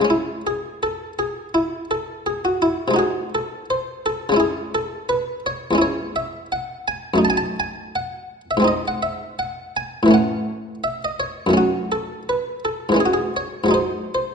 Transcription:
0.00 2.88 C#3 medium
0.00 2.89 G#3 medium
0.05 2.90 C#4 medium
0.10 0.41 E4 medium
0.47 0.82 G#4 medium
0.83 1.13 A4 medium
1.19 1.48 G#4 medium
1.54 1.84 E4 loud
1.91 2.26 A4 medium
2.26 2.44 G#4 medium
2.45 2.62 F#4 medium
2.62 2.98 E4 loud
2.88 4.32 C3 medium
2.88 4.31 G#3 medium
2.94 4.35 D#4 medium
2.94 4.36 F#4 medium
2.99 3.29 G#4 loud
3.35 3.65 A4 medium
3.70 4.06 C5 medium
4.06 4.35 A4 loud
4.29 5.71 C#3 medium
4.29 5.72 G#3 medium
4.34 5.73 C#4 medium
4.34 5.74 E4 medium
4.40 4.75 G#4 medium
4.75 5.09 A4 loud
5.09 5.39 B4 loud
5.46 5.80 C#5 loud
5.71 7.14 E2 medium
5.71 7.15 G#3 medium
5.75 7.16 C#4 medium
5.75 7.17 E4 medium
5.82 6.16 C#5 loud
6.16 6.46 E5 loud
6.52 6.87 F#5 loud
6.88 7.18 G#5 loud
7.14 8.58 F#2 medium
7.14 8.59 A3 medium
7.18 8.60 D#4 medium
7.25 7.30 A5 loud
7.30 7.36 G#5 loud
7.37 7.56 A5 loud
7.60 7.95 G#5 loud
7.95 8.41 F#5 loud
8.51 8.67 E5 loud
8.57 10.02 G#2 medium
8.57 10.04 G#3 medium
8.62 10.05 C4 medium
8.62 10.06 D#4 medium
8.68 8.85 D#5 loud
8.88 9.04 F#5 loud
9.03 9.38 E5 loud
9.39 9.75 F#5 loud
9.77 10.07 G#5 medium
10.03 11.48 A2 medium
10.03 11.49 E3 medium
10.08 11.49 A3 medium
10.08 11.51 C#4 medium
10.14 10.74 F#5 loud
10.84 11.02 E5 loud
11.04 11.21 D#5 medium
11.20 11.50 C#5 medium
11.47 12.91 F#2 medium
11.47 12.93 D#3 medium
11.47 12.93 A3 soft
11.53 12.95 C#4 medium
11.53 11.92 F#4 medium
11.92 12.22 A4 medium
12.29 12.59 B4 medium
12.65 13.01 A4 medium
12.89 13.63 G#2 medium
12.89 13.69 E3 medium
12.94 13.67 G#3 soft
12.94 13.71 C#4 soft
13.00 13.07 G#4 medium
13.06 13.13 F#4 medium
13.14 13.33 G#4 medium
13.36 13.75 C#5 medium
13.64 14.35 G#2 medium
13.64 14.35 F#3 soft
13.68 14.35 G#3 soft
13.68 14.35 D#4 soft
13.74 14.13 C5 medium
14.15 14.35 C5 medium

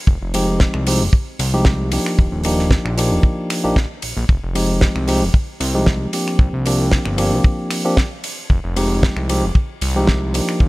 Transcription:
0.07 0.17 F1 loud
0.07 kick loud
0.22 0.67 F1 medium
0.34 0.84 F3 loud
0.34 0.84 G#3 loud
0.34 0.84 C4 medium
0.34 0.84 D#4 loud
0.34 0.84 G4 loud
0.34 open hi-hat loud
0.34 ride medium
0.60 kick loud
0.60 snare loud
0.74 1.02 C2 loud
0.74 finger snap medium
0.86 1.02 F3 loud
0.86 1.02 G#3 medium
0.86 1.02 C4 medium
0.86 1.02 D#4 medium
0.86 1.02 G4 loud
0.86 open hi-hat loud
0.86 ride medium
1.01 1.09 F1 medium
1.13 kick loud
1.39 1.99 C2 medium
1.39 open hi-hat loud
1.39 ride medium
1.53 1.89 F3 loud
1.53 1.89 G#3 medium
1.53 1.89 C4 medium
1.53 1.89 D#4 medium
1.53 1.90 G4 loud
1.65 kick loud
1.65 snare loud
1.91 2.42 F3 medium
1.91 2.42 A#3 medium
1.91 2.42 D4 medium
1.91 2.42 D#4 medium
1.91 2.42 G4 medium
1.91 open hi-hat loud
1.91 ride medium
2.06 finger snap medium
2.18 2.28 D#1 medium
2.18 kick loud
2.32 2.78 D#1 medium
2.44 2.94 F3 medium
2.44 2.95 A#3 medium
2.44 2.95 D4 medium
2.44 2.95 D#4 medium
2.44 2.95 G4 loud
2.44 open hi-hat loud
2.44 ride medium
2.59 snare soft
2.71 kick loud
2.71 snare loud
2.85 3.13 A#1 loud
2.85 finger snap medium
2.97 3.61 F3 medium
2.97 3.61 A#3 medium
2.97 3.61 D4 medium
2.97 3.62 D#4 medium
2.97 3.62 G4 loud
2.97 open hi-hat loud
2.97 ride medium
3.11 3.20 D#1 medium
3.23 kick loud
3.50 finger snap medium
3.50 open hi-hat loud
3.50 ride medium
3.63 3.74 A#1 soft
3.63 3.77 F3 loud
3.63 3.77 A#3 medium
3.63 3.77 D4 medium
3.63 3.77 D#4 medium
3.63 3.77 G4 loud
3.76 3.86 A#1 medium
3.76 kick loud
3.76 snare loud
4.02 4.14 A#1 soft
4.02 open hi-hat loud
4.02 ride medium
4.17 4.25 A#1 loud
4.29 4.39 F1 medium
4.29 kick loud
4.43 4.89 F1 medium
4.55 5.05 F3 loud
4.55 5.05 G#3 medium
4.55 5.05 C4 medium
4.55 5.05 D#4 medium
4.55 5.05 G4 loud
4.55 open hi-hat loud
4.55 ride medium
4.81 kick loud
4.81 snare loud
4.96 5.23 C2 loud
4.96 finger snap medium
5.07 5.23 F3 loud
5.07 5.23 G#3 medium
5.07 5.23 C4 medium
5.07 5.23 D#4 medium
5.07 5.23 G4 loud
5.07 open hi-hat loud
5.07 ride medium
5.22 5.30 F1 medium
5.34 kick loud
5.60 6.07 C2 medium
5.60 open hi-hat loud
5.60 ride medium
5.74 6.10 F3 loud
5.74 6.10 G#3 medium
5.74 6.10 C4 medium
5.74 6.10 D#4 medium
5.74 6.11 G4 loud
5.86 kick loud
5.86 snare loud
6.13 6.63 F3 medium
6.13 6.63 A#3 medium
6.13 6.63 C4 medium
6.13 6.63 D4 medium
6.13 6.63 G4 medium
6.13 open hi-hat loud
6.13 ride medium
6.28 finger snap medium
6.39 6.49 C2 medium
6.39 kick loud
6.53 6.99 C2 medium
6.65 7.15 F3 medium
6.65 7.15 A#3 medium
6.65 7.16 C4 medium
6.65 7.16 D4 medium
6.65 7.16 G4 loud
6.65 open hi-hat loud
6.65 ride medium
6.92 kick loud
6.92 snare loud
7.05 7.34 G1 loud
7.05 finger snap medium
7.17 7.82 F3 medium
7.17 7.82 A#3 medium
7.17 7.82 C4 medium
7.17 7.82 D4 medium
7.17 7.83 G4 loud
7.17 open hi-hat loud
7.17 ride loud
7.32 7.41 C2 medium
7.44 kick loud
7.71 finger snap medium
7.71 open hi-hat loud
7.71 ride medium
7.84 7.98 F3 loud
7.84 7.98 A#3 medium
7.84 7.98 C4 medium
7.84 7.98 D4 medium
7.84 7.98 G4 loud
7.97 kick loud
7.97 snare loud
8.24 open hi-hat loud
8.24 ride medium
8.50 8.60 F1 loud
8.50 kick loud
8.64 9.10 F1 medium
8.76 9.26 F3 loud
8.76 9.26 G#3 medium
8.76 9.26 C4 medium
8.76 9.26 D#4 medium
8.76 9.26 G4 loud
8.76 open hi-hat loud
8.76 ride medium
9.03 kick loud
9.03 snare loud
9.16 9.44 C2 loud
9.16 finger snap medium
9.29 9.44 F3 loud
9.29 9.44 G#3 medium
9.29 9.44 C4 medium
9.29 9.44 D#4 medium
9.29 9.44 G4 loud
9.29 open hi-hat loud
9.29 ride loud
9.43 9.51 F1 medium
9.55 kick loud
9.81 10.41 C2 medium
9.81 open hi-hat loud
9.81 ride loud
9.96 10.31 F3 loud
9.96 10.31 G#3 medium
9.96 10.31 C4 loud
9.96 10.32 D#4 loud
9.96 10.32 G4 loud
10.07 kick loud
10.07 snare loud
10.34 10.69 F3 medium
10.34 10.69 A#3 medium
10.34 10.69 D4 medium
10.34 10.69 D#4 medium
10.34 10.69 G4 medium
10.34 open hi-hat loud
10.34 ride medium
10.49 finger snap medium
10.60 10.69 D#1 medium
10.60 kick loud

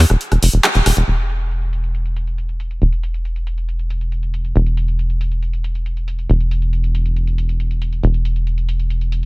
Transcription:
0.10 0.16 E1 medium
0.10 cross-stick soft
0.21 closed hi-hat medium
0.32 0.38 E1 medium
0.32 cross-stick soft
0.32 closed hi-hat soft
0.43 0.49 F1 loud
0.43 open hi-hat loud
0.53 0.60 E1 medium
0.53 closed hi-hat soft
0.64 cross-stick medium
0.64 clap loud
0.64 closed hi-hat medium
0.75 0.81 E1 medium
0.75 closed hi-hat soft
0.86 0.92 E1 loud
0.86 cross-stick soft
0.86 open hi-hat loud
0.97 1.03 E1 loud
0.97 closed hi-hat soft
1.08 2.80 E1 medium
1.08 closed hi-hat medium
1.19 closed hi-hat soft
1.30 closed hi-hat medium
1.40 closed hi-hat soft
1.51 closed hi-hat medium
1.62 closed hi-hat soft
1.73 closed hi-hat medium
1.84 closed hi-hat soft
1.95 closed hi-hat medium
2.06 closed hi-hat soft
2.16 closed hi-hat medium
2.27 closed hi-hat soft
2.38 closed hi-hat medium
2.49 closed hi-hat soft
2.60 closed hi-hat loud
2.71 closed hi-hat soft
2.82 4.53 E1 medium
2.82 closed hi-hat medium
2.93 closed hi-hat soft
3.03 closed hi-hat medium
3.14 closed hi-hat soft
3.25 closed hi-hat medium
3.36 closed hi-hat soft
3.47 closed hi-hat medium
3.58 closed hi-hat soft
3.69 closed hi-hat medium
3.79 closed hi-hat soft
3.90 closed hi-hat medium
4.01 closed hi-hat soft
4.12 closed hi-hat medium
4.23 closed hi-hat soft
4.34 closed hi-hat medium
4.45 closed hi-hat soft
4.56 6.27 E1 medium
4.56 closed hi-hat medium
4.66 closed hi-hat soft
4.77 closed hi-hat medium
4.88 closed hi-hat soft
4.99 closed hi-hat medium
5.10 closed hi-hat soft
5.21 closed hi-hat medium
5.32 closed hi-hat soft
5.43 closed hi-hat medium
5.53 closed hi-hat soft
5.64 closed hi-hat medium
5.75 closed hi-hat soft
5.86 closed hi-hat medium
5.97 closed hi-hat soft
6.08 closed hi-hat medium
6.19 closed hi-hat soft
6.30 8.01 E1 medium
6.30 closed hi-hat medium
6.40 closed hi-hat soft
6.51 closed hi-hat medium
6.62 closed hi-hat soft
6.73 closed hi-hat medium
6.84 closed hi-hat soft
6.95 closed hi-hat medium
7.06 closed hi-hat soft
7.17 closed hi-hat medium
7.27 closed hi-hat soft
7.38 closed hi-hat medium
7.49 closed hi-hat soft
7.60 closed hi-hat medium
7.71 closed hi-hat soft
7.82 closed hi-hat medium
7.93 closed hi-hat soft
8.03 9.25 E1 medium
8.03 closed hi-hat medium
8.14 closed hi-hat soft
8.25 closed hi-hat medium
8.36 closed hi-hat soft
8.47 closed hi-hat medium
8.58 closed hi-hat soft
8.69 closed hi-hat medium
8.80 closed hi-hat soft
8.90 closed hi-hat medium
9.01 closed hi-hat soft
9.12 closed hi-hat medium

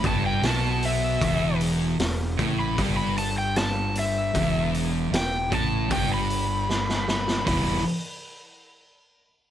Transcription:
0.03 0.40 G1 medium
0.03 0.42 G2 medium
0.03 0.24 A5 medium
0.03 kick loud
0.03 open hi-hat soft
0.26 0.44 G5 medium
0.42 1.17 B1 medium
0.42 1.20 B2 loud
0.42 snare loud
0.42 open hi-hat medium
0.48 0.83 A5 medium
0.83 1.60 E5 loud
0.83 open hi-hat medium
1.21 1.96 E1 medium
1.21 1.98 E2 loud
1.21 kick loud
1.21 open hi-hat medium
1.61 open hi-hat medium
1.99 2.36 E1 medium
1.99 2.31 E2 medium
1.99 snare loud
1.99 open hi-hat medium
2.38 2.75 A1 loud
2.38 2.76 A2 loud
2.38 kick medium
2.38 open hi-hat soft
2.59 2.78 B5 loud
2.77 4.31 G1 medium
2.77 4.33 G2 loud
2.77 kick loud
2.77 open hi-hat medium
2.97 3.16 B5 medium
3.17 3.37 A5 loud
3.17 open hi-hat medium
3.38 3.56 G5 medium
3.56 3.95 A5 medium
3.56 snare loud
3.56 open hi-hat medium
3.95 4.73 E5 medium
3.95 open hi-hat medium
4.34 5.09 E1 medium
4.34 5.10 E2 loud
4.34 kick loud
4.34 open hi-hat medium
4.74 open hi-hat medium
5.12 5.49 E1 medium
5.12 5.43 E2 medium
5.12 snare loud
5.12 open hi-hat medium
5.16 5.53 G5 loud
5.50 5.88 A1 medium
5.50 5.89 A2 medium
5.50 kick loud
5.50 open hi-hat medium
5.54 5.91 A5 medium
5.89 7.43 G1 medium
5.89 7.45 G2 loud
5.89 6.11 G5 medium
5.89 kick loud
5.89 open hi-hat medium
6.14 7.07 B5 medium
6.30 open hi-hat medium
6.70 snare medium
6.89 snare medium
7.08 7.46 B5 loud
7.08 snare medium
7.28 snare medium
7.45 7.83 E1 medium
7.45 7.77 E3 medium
7.45 7.78 G3 medium
7.45 7.78 B3 medium
7.45 7.78 E4 loud
7.45 7.84 B5 medium
7.45 kick medium
7.45 open hi-hat medium

